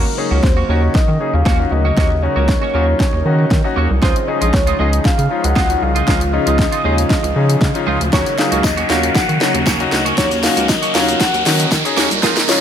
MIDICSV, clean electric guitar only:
0, 0, Header, 1, 3, 480
1, 0, Start_track
1, 0, Key_signature, -6, "minor"
1, 0, Tempo, 512821
1, 1849, Time_signature, 4, 2, 24, 8
1, 11799, End_track
2, 0, Start_track
2, 0, Title_t, "Clean electric guitar"
2, 0, Program_c, 0, 27
2, 290, Note_on_c, 0, 66, 63
2, 300, Note_on_c, 0, 61, 58
2, 308, Note_on_c, 0, 58, 52
2, 384, Note_off_c, 0, 66, 0
2, 389, Note_off_c, 0, 61, 0
2, 393, Note_off_c, 0, 58, 0
2, 531, Note_on_c, 0, 66, 67
2, 541, Note_on_c, 0, 61, 52
2, 550, Note_on_c, 0, 58, 52
2, 625, Note_off_c, 0, 66, 0
2, 630, Note_off_c, 0, 61, 0
2, 634, Note_off_c, 0, 58, 0
2, 643, Note_on_c, 0, 58, 84
2, 654, Note_on_c, 0, 61, 90
2, 661, Note_on_c, 0, 66, 93
2, 762, Note_off_c, 0, 66, 0
2, 774, Note_off_c, 0, 61, 0
2, 777, Note_off_c, 0, 58, 0
2, 1363, Note_on_c, 0, 58, 76
2, 1373, Note_on_c, 0, 61, 88
2, 1382, Note_on_c, 0, 66, 88
2, 1480, Note_off_c, 0, 66, 0
2, 1493, Note_off_c, 0, 61, 0
2, 1497, Note_off_c, 0, 58, 0
2, 1730, Note_on_c, 0, 66, 59
2, 1741, Note_on_c, 0, 61, 54
2, 1749, Note_on_c, 0, 58, 48
2, 1824, Note_off_c, 0, 66, 0
2, 1830, Note_off_c, 0, 61, 0
2, 1831, Note_off_c, 0, 58, 0
2, 1843, Note_on_c, 0, 58, 80
2, 1853, Note_on_c, 0, 61, 78
2, 1861, Note_on_c, 0, 66, 93
2, 1960, Note_off_c, 0, 66, 0
2, 1973, Note_off_c, 0, 61, 0
2, 1976, Note_off_c, 0, 58, 0
2, 2208, Note_on_c, 0, 66, 64
2, 2219, Note_on_c, 0, 61, 57
2, 2227, Note_on_c, 0, 58, 46
2, 2303, Note_off_c, 0, 66, 0
2, 2308, Note_off_c, 0, 61, 0
2, 2313, Note_off_c, 0, 58, 0
2, 2449, Note_on_c, 0, 66, 63
2, 2459, Note_on_c, 0, 61, 55
2, 2467, Note_on_c, 0, 58, 53
2, 2543, Note_off_c, 0, 66, 0
2, 2548, Note_off_c, 0, 61, 0
2, 2550, Note_off_c, 0, 58, 0
2, 2561, Note_on_c, 0, 58, 83
2, 2571, Note_on_c, 0, 61, 79
2, 2579, Note_on_c, 0, 66, 95
2, 2679, Note_off_c, 0, 66, 0
2, 2692, Note_off_c, 0, 61, 0
2, 2696, Note_off_c, 0, 58, 0
2, 3522, Note_on_c, 0, 58, 76
2, 3532, Note_on_c, 0, 61, 75
2, 3541, Note_on_c, 0, 66, 82
2, 3640, Note_off_c, 0, 66, 0
2, 3653, Note_off_c, 0, 61, 0
2, 3656, Note_off_c, 0, 58, 0
2, 3762, Note_on_c, 0, 56, 83
2, 3773, Note_on_c, 0, 63, 88
2, 3781, Note_on_c, 0, 65, 92
2, 3880, Note_off_c, 0, 65, 0
2, 3893, Note_off_c, 0, 63, 0
2, 3896, Note_off_c, 0, 56, 0
2, 4129, Note_on_c, 0, 65, 64
2, 4139, Note_on_c, 0, 63, 54
2, 4147, Note_on_c, 0, 56, 47
2, 4223, Note_off_c, 0, 65, 0
2, 4228, Note_off_c, 0, 63, 0
2, 4232, Note_off_c, 0, 56, 0
2, 4370, Note_on_c, 0, 65, 61
2, 4380, Note_on_c, 0, 63, 57
2, 4388, Note_on_c, 0, 56, 55
2, 4464, Note_off_c, 0, 65, 0
2, 4469, Note_off_c, 0, 63, 0
2, 4471, Note_off_c, 0, 56, 0
2, 4482, Note_on_c, 0, 56, 94
2, 4492, Note_on_c, 0, 63, 86
2, 4500, Note_on_c, 0, 65, 101
2, 4600, Note_off_c, 0, 65, 0
2, 4613, Note_off_c, 0, 63, 0
2, 4616, Note_off_c, 0, 56, 0
2, 5203, Note_on_c, 0, 56, 92
2, 5213, Note_on_c, 0, 63, 99
2, 5221, Note_on_c, 0, 65, 106
2, 5321, Note_off_c, 0, 65, 0
2, 5334, Note_off_c, 0, 63, 0
2, 5336, Note_off_c, 0, 56, 0
2, 5569, Note_on_c, 0, 65, 63
2, 5580, Note_on_c, 0, 63, 52
2, 5588, Note_on_c, 0, 56, 52
2, 5664, Note_off_c, 0, 65, 0
2, 5669, Note_off_c, 0, 63, 0
2, 5673, Note_off_c, 0, 56, 0
2, 5683, Note_on_c, 0, 56, 76
2, 5693, Note_on_c, 0, 63, 85
2, 5701, Note_on_c, 0, 65, 82
2, 5800, Note_off_c, 0, 65, 0
2, 5813, Note_off_c, 0, 63, 0
2, 5816, Note_off_c, 0, 56, 0
2, 6050, Note_on_c, 0, 65, 63
2, 6060, Note_on_c, 0, 63, 52
2, 6068, Note_on_c, 0, 56, 52
2, 6144, Note_off_c, 0, 65, 0
2, 6149, Note_off_c, 0, 63, 0
2, 6153, Note_off_c, 0, 56, 0
2, 6289, Note_on_c, 0, 65, 61
2, 6299, Note_on_c, 0, 63, 53
2, 6307, Note_on_c, 0, 56, 50
2, 6384, Note_off_c, 0, 65, 0
2, 6389, Note_off_c, 0, 63, 0
2, 6393, Note_off_c, 0, 56, 0
2, 6402, Note_on_c, 0, 56, 87
2, 6413, Note_on_c, 0, 63, 91
2, 6421, Note_on_c, 0, 65, 96
2, 6520, Note_off_c, 0, 65, 0
2, 6532, Note_off_c, 0, 63, 0
2, 6536, Note_off_c, 0, 56, 0
2, 7363, Note_on_c, 0, 56, 90
2, 7373, Note_on_c, 0, 63, 93
2, 7382, Note_on_c, 0, 65, 94
2, 7480, Note_off_c, 0, 65, 0
2, 7493, Note_off_c, 0, 63, 0
2, 7497, Note_off_c, 0, 56, 0
2, 7602, Note_on_c, 0, 58, 71
2, 7612, Note_on_c, 0, 61, 79
2, 7621, Note_on_c, 0, 66, 88
2, 7720, Note_off_c, 0, 66, 0
2, 7733, Note_off_c, 0, 61, 0
2, 7736, Note_off_c, 0, 58, 0
2, 7971, Note_on_c, 0, 66, 62
2, 7981, Note_on_c, 0, 61, 53
2, 7990, Note_on_c, 0, 58, 51
2, 8064, Note_off_c, 0, 66, 0
2, 8070, Note_off_c, 0, 61, 0
2, 8074, Note_off_c, 0, 58, 0
2, 8211, Note_on_c, 0, 66, 74
2, 8221, Note_on_c, 0, 61, 59
2, 8229, Note_on_c, 0, 58, 52
2, 8304, Note_off_c, 0, 66, 0
2, 8309, Note_off_c, 0, 61, 0
2, 8314, Note_off_c, 0, 58, 0
2, 8324, Note_on_c, 0, 58, 82
2, 8333, Note_on_c, 0, 61, 93
2, 8341, Note_on_c, 0, 66, 91
2, 8441, Note_off_c, 0, 66, 0
2, 8454, Note_off_c, 0, 61, 0
2, 8457, Note_off_c, 0, 58, 0
2, 9043, Note_on_c, 0, 58, 79
2, 9053, Note_on_c, 0, 61, 86
2, 9061, Note_on_c, 0, 66, 94
2, 9160, Note_off_c, 0, 66, 0
2, 9173, Note_off_c, 0, 61, 0
2, 9177, Note_off_c, 0, 58, 0
2, 9410, Note_on_c, 0, 66, 66
2, 9420, Note_on_c, 0, 61, 57
2, 9428, Note_on_c, 0, 58, 51
2, 9504, Note_off_c, 0, 66, 0
2, 9509, Note_off_c, 0, 61, 0
2, 9510, Note_off_c, 0, 58, 0
2, 9522, Note_on_c, 0, 58, 78
2, 9533, Note_on_c, 0, 61, 87
2, 9540, Note_on_c, 0, 66, 91
2, 9640, Note_off_c, 0, 66, 0
2, 9653, Note_off_c, 0, 61, 0
2, 9656, Note_off_c, 0, 58, 0
2, 9891, Note_on_c, 0, 66, 72
2, 9900, Note_on_c, 0, 61, 67
2, 9909, Note_on_c, 0, 58, 57
2, 9984, Note_off_c, 0, 66, 0
2, 9989, Note_off_c, 0, 61, 0
2, 9993, Note_off_c, 0, 58, 0
2, 10129, Note_on_c, 0, 66, 63
2, 10139, Note_on_c, 0, 61, 58
2, 10148, Note_on_c, 0, 58, 50
2, 10224, Note_off_c, 0, 66, 0
2, 10229, Note_off_c, 0, 61, 0
2, 10230, Note_off_c, 0, 58, 0
2, 10242, Note_on_c, 0, 58, 81
2, 10252, Note_on_c, 0, 61, 91
2, 10260, Note_on_c, 0, 66, 87
2, 10360, Note_off_c, 0, 66, 0
2, 10373, Note_off_c, 0, 61, 0
2, 10376, Note_off_c, 0, 58, 0
2, 11203, Note_on_c, 0, 58, 93
2, 11213, Note_on_c, 0, 61, 91
2, 11221, Note_on_c, 0, 66, 93
2, 11319, Note_off_c, 0, 66, 0
2, 11332, Note_off_c, 0, 61, 0
2, 11336, Note_off_c, 0, 58, 0
2, 11442, Note_on_c, 0, 56, 77
2, 11453, Note_on_c, 0, 63, 78
2, 11461, Note_on_c, 0, 65, 90
2, 11559, Note_off_c, 0, 65, 0
2, 11572, Note_off_c, 0, 63, 0
2, 11576, Note_off_c, 0, 56, 0
2, 11799, End_track
3, 0, Start_track
3, 0, Title_t, "Muted clean electric guitar strokes"
3, 51, Note_on_c, 9, 29, 42
3, 145, Note_off_c, 9, 29, 0
3, 164, Note_on_c, 9, 29, 43
3, 258, Note_off_c, 9, 29, 0
3, 773, Note_on_c, 9, 29, 42
3, 866, Note_off_c, 9, 29, 0
3, 885, Note_on_c, 9, 29, 43
3, 978, Note_off_c, 9, 29, 0
3, 1012, Note_on_c, 9, 29, 44
3, 1106, Note_off_c, 9, 29, 0
3, 1252, Note_on_c, 9, 29, 48
3, 1345, Note_off_c, 9, 29, 0
3, 1491, Note_on_c, 9, 29, 48
3, 1585, Note_off_c, 9, 29, 0
3, 1604, Note_on_c, 9, 29, 45
3, 1698, Note_off_c, 9, 29, 0
3, 1971, Note_on_c, 9, 29, 53
3, 2065, Note_off_c, 9, 29, 0
3, 2084, Note_on_c, 9, 29, 40
3, 2178, Note_off_c, 9, 29, 0
3, 2322, Note_on_c, 9, 29, 40
3, 2416, Note_off_c, 9, 29, 0
3, 2691, Note_on_c, 9, 29, 39
3, 2784, Note_off_c, 9, 29, 0
3, 2803, Note_on_c, 9, 29, 34
3, 2897, Note_off_c, 9, 29, 0
3, 2930, Note_on_c, 9, 29, 36
3, 3024, Note_off_c, 9, 29, 0
3, 3171, Note_on_c, 9, 29, 41
3, 3264, Note_off_c, 9, 29, 0
3, 3412, Note_on_c, 9, 29, 50
3, 3505, Note_off_c, 9, 29, 0
3, 3652, Note_on_c, 9, 29, 43
3, 3745, Note_off_c, 9, 29, 0
3, 3891, Note_on_c, 9, 29, 40
3, 3984, Note_off_c, 9, 29, 0
3, 4003, Note_on_c, 9, 29, 43
3, 4096, Note_off_c, 9, 29, 0
3, 4243, Note_on_c, 9, 29, 39
3, 4336, Note_off_c, 9, 29, 0
3, 4611, Note_on_c, 9, 29, 54
3, 4705, Note_off_c, 9, 29, 0
3, 4724, Note_on_c, 9, 29, 41
3, 4818, Note_off_c, 9, 29, 0
3, 4852, Note_on_c, 9, 29, 39
3, 4945, Note_off_c, 9, 29, 0
3, 5092, Note_on_c, 9, 29, 50
3, 5186, Note_off_c, 9, 29, 0
3, 5332, Note_on_c, 9, 29, 54
3, 5426, Note_off_c, 9, 29, 0
3, 5444, Note_on_c, 9, 29, 42
3, 5538, Note_off_c, 9, 29, 0
3, 5811, Note_on_c, 9, 29, 55
3, 5905, Note_off_c, 9, 29, 0
3, 5924, Note_on_c, 9, 29, 41
3, 6017, Note_off_c, 9, 29, 0
3, 6531, Note_on_c, 9, 29, 40
3, 6625, Note_off_c, 9, 29, 0
3, 6644, Note_on_c, 9, 29, 39
3, 6738, Note_off_c, 9, 29, 0
3, 6771, Note_on_c, 9, 29, 43
3, 6865, Note_off_c, 9, 29, 0
3, 7011, Note_on_c, 9, 29, 39
3, 7104, Note_off_c, 9, 29, 0
3, 7251, Note_on_c, 9, 29, 42
3, 7344, Note_off_c, 9, 29, 0
3, 7491, Note_on_c, 9, 29, 47
3, 7584, Note_off_c, 9, 29, 0
3, 7732, Note_on_c, 9, 29, 57
3, 7825, Note_off_c, 9, 29, 0
3, 7846, Note_on_c, 9, 29, 44
3, 7939, Note_off_c, 9, 29, 0
3, 8085, Note_on_c, 9, 29, 48
3, 8179, Note_off_c, 9, 29, 0
3, 8453, Note_on_c, 9, 29, 57
3, 8546, Note_off_c, 9, 29, 0
3, 8566, Note_on_c, 9, 29, 40
3, 8659, Note_off_c, 9, 29, 0
3, 8693, Note_on_c, 9, 29, 43
3, 8786, Note_off_c, 9, 29, 0
3, 8932, Note_on_c, 9, 29, 45
3, 9026, Note_off_c, 9, 29, 0
3, 9172, Note_on_c, 9, 29, 45
3, 9265, Note_off_c, 9, 29, 0
3, 9284, Note_on_c, 9, 29, 43
3, 9377, Note_off_c, 9, 29, 0
3, 9652, Note_on_c, 9, 29, 50
3, 9745, Note_off_c, 9, 29, 0
3, 9765, Note_on_c, 9, 29, 35
3, 9859, Note_off_c, 9, 29, 0
3, 10004, Note_on_c, 9, 29, 42
3, 10098, Note_off_c, 9, 29, 0
3, 10372, Note_on_c, 9, 29, 49
3, 10465, Note_off_c, 9, 29, 0
3, 10485, Note_on_c, 9, 29, 38
3, 10578, Note_off_c, 9, 29, 0
3, 10611, Note_on_c, 9, 29, 49
3, 10705, Note_off_c, 9, 29, 0
3, 10852, Note_on_c, 9, 29, 52
3, 10946, Note_off_c, 9, 29, 0
3, 11092, Note_on_c, 9, 29, 57
3, 11185, Note_off_c, 9, 29, 0
3, 11330, Note_on_c, 9, 29, 50
3, 11424, Note_off_c, 9, 29, 0
3, 11570, Note_on_c, 9, 29, 48
3, 11664, Note_off_c, 9, 29, 0
3, 11684, Note_on_c, 9, 29, 37
3, 11777, Note_off_c, 9, 29, 0
3, 11799, End_track
0, 0, End_of_file